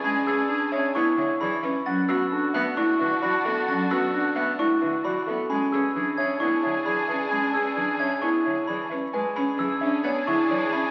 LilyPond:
<<
  \new Staff \with { instrumentName = "Glockenspiel" } { \time 4/4 \key e \mixolydian \tempo 4 = 132 b''8 e'''8 r8 gis'''8 cis'''8 r8 b''8 r8 | a'''8 e'''8 r8 fis'''8 cis'''8 r8 b''8 r8 | a'''8 e'''8 r8 fis'''8 cis'''8 r8 b''8 r8 | b''8 e'''8 r8 gis'''8 cis'''8 r8 b''8 r8 |
b''8 e'''8 r8 gis'''8 cis'''8 r8 b''8 r8 | r8 b''8 e'''8 r8 gis'''8 cis'''8 r8 b''8 | }
  \new Staff \with { instrumentName = "Grand piano" } { \time 4/4 \key e \mixolydian gis''8 b'8 gis'8 e''8 d''8 e''8 d''8 e''8 | fis''8 b'8 a'8 e''8 d''8 e''8 d''8 e''8 | fis''8 b'8 a'8 e''8 d''8 e''8 d''8 e''8 | gis''8 b'8 gis'8 e''8 d''8 e''8 d''8 e''8 |
gis''8 b'8 gis'8 e''8 d''8 e''8 d''8 e''8 | gis''8 b'8 gis'8 e''8 d''8 e''8 d''8 e''8 | }
  \new Staff \with { instrumentName = "Marimba" } { \time 4/4 \key e \mixolydian cis'8 gis'8 d'8 cis''8 e'8 cis''8 gis'8 b'8 | cis'8 fis'8 d'8 b'8 e'8 b'8 fis'8 a'8 | cis'8 fis'8 d'8 b'8 e'8 b'8 fis'8 a'8 | cis'8 gis'8 d'8 cis''8 e'8 cis''8 gis'8 b'8 |
cis'8 gis'8 d'8 cis''8 e'8 cis''8 gis'8 b'8 | b'8 cis'8 gis'8 d'8 cis''8 e'8 cis''8 gis'8 | }
  \new Staff \with { instrumentName = "Oboe" } { \time 4/4 \key e \mixolydian gis'8 gis'8 gis'8 gis'8 gis'8 gis'8 gis'8 r8 | fis'8 fis'8 fis'8 fis'8 fis'8 fis'8 fis'8 fis'8 | fis'8 fis'8 fis'8 fis'8 fis'8 fis'8 fis'8 r8 | gis'8 gis'8 gis'8 gis'8 gis'8 gis'8 gis'8 gis'8 |
gis'8 gis'8 gis'8 gis'8 gis'8 gis'8 gis'8 r8 | gis'1 | }
  \new Staff \with { instrumentName = "Violin section" } { \time 4/4 \key e \mixolydian <d' gis'>2.~ <d' gis'>8 r8 | <d' fis'>1~ | <d' fis'>2.~ <d' fis'>8 r8 | <d' gis'>1~ |
<d' gis'>2.~ <d' gis'>8 r8 | <d' gis'>1 | }
  \new Staff \with { instrumentName = "Cello" } { \time 4/4 \key e \mixolydian gis8 cis'8 r8 cis'8 b8 d8 e8 cis'8 | fis8 b8 r8 b8 a8 d8 e8 b8 | fis8 b8 r8 b8 a8 d8 e8 b8 | gis8 cis'8 e8 cis'8 b8 d8 e8 cis'8 |
gis8 cis'8 e8 cis'8 b8 d8 e8 cis'8 | gis8 cis'8 e8 cis'8 b8 d8 e8 cis'8 | }
>>